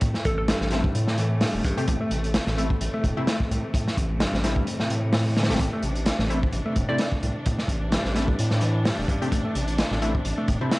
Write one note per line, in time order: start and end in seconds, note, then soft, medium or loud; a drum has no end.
0.00 0.14 A2 loud
0.00 10.79 C3 medium
0.00 10.79 E3 medium
0.00 5.58 A3 medium
0.00 kick loud
0.00 closed hi-hat medium
0.14 snare soft
0.25 0.54 A1 loud
0.25 0.33 A4 medium
0.25 kick loud
0.25 closed hi-hat medium
0.38 0.44 A4 medium
0.48 0.94 G2 medium
0.48 snare loud
0.48 closed hi-hat medium
0.61 0.89 A1 loud
0.61 snare soft
0.71 1.74 A3 medium
0.71 1.74 C4 medium
0.71 1.74 E4 medium
0.71 snare soft
0.71 closed hi-hat medium
0.84 kick loud
0.95 1.47 A2 loud
0.95 closed hi-hat medium
1.08 1.17 A2 medium
1.08 snare soft
1.18 1.40 E3 loud
1.18 closed hi-hat medium
1.41 1.64 G2 medium
1.41 snare loud
1.41 open hi-hat medium
1.54 1.61 E1 loud
1.64 1.73 A1 loud
1.64 1.75 G2 loud
1.64 kick loud
1.64 closed hi-hat medium
1.77 1.87 C3 medium
1.77 1.84 A3 medium
1.77 1.84 C4 medium
1.77 1.84 G4 loud
1.77 closed hi-hat soft
1.88 1.96 A1 loud
1.88 1.99 A2 loud
1.88 kick loud
1.88 closed hi-hat medium
2.01 2.11 A3 loud
2.11 2.40 A1 loud
2.11 2.17 C3 medium
2.11 closed hi-hat medium
2.24 closed hi-hat soft
2.34 snare loud
2.34 closed hi-hat medium
2.47 2.75 A1 loud
2.47 2.52 A2 loud
2.47 snare medium
2.58 2.68 A3 medium
2.58 2.66 A3 medium
2.58 2.66 C4 medium
2.58 2.66 E4 medium
2.58 closed hi-hat medium
2.70 kick loud
2.81 2.89 A1 loud
2.81 closed hi-hat medium
2.94 3.04 A3 loud
3.04 3.12 E1 medium
3.04 3.16 A2 medium
3.04 kick loud
3.04 closed hi-hat medium
3.17 3.25 C3 medium
3.17 3.24 A3 medium
3.17 3.24 C4 medium
3.17 3.24 E4 medium
3.27 3.34 A3 medium
3.27 snare loud
3.27 closed hi-hat medium
3.40 kick medium
3.51 3.59 C2 medium
3.51 3.63 A2 medium
3.51 closed hi-hat medium
3.74 3.86 A2 loud
3.74 kick loud
3.74 closed hi-hat loud
3.88 snare medium
3.97 4.26 A1 loud
3.97 kick medium
3.97 closed hi-hat medium
4.20 4.66 G2 medium
4.20 snare loud
4.20 closed hi-hat loud
4.33 4.61 A1 loud
4.33 snare soft
4.44 5.46 A3 medium
4.44 5.46 C4 medium
4.44 5.46 E4 medium
4.44 snare soft
4.44 closed hi-hat medium
4.56 kick loud
4.67 closed hi-hat medium
4.80 4.89 A2 medium
4.80 snare soft
4.90 5.51 A2 medium
4.90 5.02 A2 medium
4.90 closed hi-hat medium
5.13 5.24 A2 loud
5.13 snare loud
5.13 open hi-hat medium
5.37 5.48 D3 medium
5.37 snare medium
5.37 closed hi-hat medium
5.43 snare medium
5.43 closed hi-hat medium
5.49 5.56 E1 loud
5.49 5.59 A2 medium
5.49 5.56 A3 medium
5.49 5.56 C4 medium
5.49 5.56 G4 loud
5.49 snare medium
5.49 closed hi-hat medium
5.55 snare medium
5.55 closed hi-hat medium
5.59 5.68 A1 loud
5.59 5.71 A2 loud
5.59 10.79 D4 medium
5.59 kick loud
5.59 closed hi-hat medium
5.73 5.83 A3 loud
5.83 6.12 A1 medium
5.83 5.89 C3 medium
5.83 closed hi-hat medium
5.95 closed hi-hat soft
6.06 snare loud
6.06 closed hi-hat loud
6.19 6.47 A1 loud
6.19 6.24 A2 loud
6.19 snare medium
6.30 6.40 A3 medium
6.30 6.38 A3 medium
6.30 6.38 C4 medium
6.30 6.38 E4 medium
6.30 closed hi-hat medium
6.43 kick loud
6.53 6.61 A1 loud
6.53 closed hi-hat medium
6.66 6.76 A3 loud
6.76 6.84 E1 medium
6.76 6.88 A2 medium
6.76 kick loud
6.76 closed hi-hat medium
6.89 6.97 C3 medium
6.89 6.96 A3 medium
6.89 6.96 C4 medium
6.89 6.96 E4 medium
6.89 7.01 D5 medium
6.98 7.06 A3 medium
6.98 snare loud
6.98 closed hi-hat loud
7.12 kick medium
7.22 7.31 C2 loud
7.22 7.35 A2 medium
7.22 closed hi-hat medium
7.46 7.58 A2 loud
7.46 kick loud
7.46 closed hi-hat medium
7.58 snare soft
7.68 7.97 A1 medium
7.68 kick medium
7.68 closed hi-hat medium
7.92 8.38 G2 medium
7.92 snare loud
7.92 closed hi-hat medium
8.05 8.33 A1 loud
8.05 snare soft
8.15 9.18 A3 medium
8.15 9.18 C4 medium
8.15 9.18 E4 medium
8.15 snare soft
8.15 closed hi-hat medium
8.28 kick loud
8.39 8.91 A2 loud
8.39 closed hi-hat loud
8.51 8.61 A2 medium
8.51 snare soft
8.61 8.84 E3 loud
8.61 closed hi-hat medium
8.85 9.08 G2 medium
8.85 snare loud
8.85 open hi-hat medium
8.98 9.05 E1 loud
9.08 9.17 A1 loud
9.08 9.19 G2 loud
9.08 kick loud
9.08 closed hi-hat medium
9.22 9.31 C3 medium
9.22 9.28 A3 medium
9.22 9.28 C4 medium
9.22 9.28 G4 loud
9.22 closed hi-hat soft
9.32 9.40 A1 loud
9.32 9.43 A2 loud
9.32 kick loud
9.32 closed hi-hat medium
9.45 9.54 A3 loud
9.55 9.84 A1 medium
9.55 9.61 C3 medium
9.55 closed hi-hat medium
9.68 closed hi-hat soft
9.78 snare loud
9.78 closed hi-hat loud
9.91 10.19 A1 loud
9.91 9.96 A2 loud
9.91 snare soft
10.02 10.12 A3 medium
10.02 10.10 A3 medium
10.02 10.10 C4 medium
10.02 10.10 E4 medium
10.02 closed hi-hat medium
10.15 kick medium
10.25 10.33 A1 loud
10.25 closed hi-hat medium
10.38 10.48 A3 loud
10.48 10.57 E1 medium
10.48 10.60 A2 medium
10.48 kick medium
10.48 closed hi-hat medium
10.61 10.69 C3 medium
10.61 10.68 A3 medium
10.61 10.68 C4 medium
10.61 10.68 E4 medium
10.71 10.78 A3 medium
10.71 snare loud
10.71 closed hi-hat medium